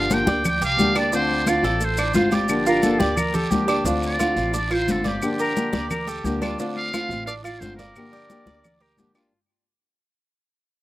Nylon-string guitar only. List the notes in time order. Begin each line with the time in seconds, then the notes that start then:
0.10 D3 F3 A#3 D4 G4
0.26 A#3 D4 G4
0.44 muted nylon-string guitar stroke
0.77 D3 F3 A#3 D4 G4
0.95 A#3 D4 G4
1.13 D3 A3 C4 F4
1.46 D3 A3 C4 F4
1.63 A3 C4 F4
1.81 muted nylon-string guitar stroke
2.14 D3 A3 C4 F4
2.30 A3 C4 F4
2.48 D3 F3 A#3 D4 G4
2.82 D3 F3 A#3 D4 G4
3.00 A#3 D4 G4
3.16 muted nylon-string guitar stroke
3.50 D3 F3 A#3 D4 G4
3.67 A#3 D4 G4
3.85 D3 A3 C4 F4
4.19 D3 A3 C4 F4
4.36 A3 C4 F4
4.54 muted nylon-string guitar stroke
4.88 D3 A3 C4 F4
5.04 A3 C4 F4
5.21 D3 F3 A#3 D4 G4
5.56 D3 F3 A#3 D4 G4
5.72 A#3 D4 G4
5.90 muted nylon-string guitar stroke
6.25 D3 F3 A#3 D4 G4
6.42 A#3 D4 G4
6.59 D3 A3 C4 F4
6.93 D3 A3 C4 F4
7.11 A3 C4 F4
7.27 muted nylon-string guitar stroke
7.60 D3 A3 C4 F4
7.79 A3 C4 F4
7.96 D3 F3 A#3 D4 G4
8.29 D3 F3 A#3 D4 G4
8.49 A#3 D4
8.64 muted nylon-string guitar stroke
8.98 D3 F3 A#3 D4 G4
9.15 A#3 D4 G4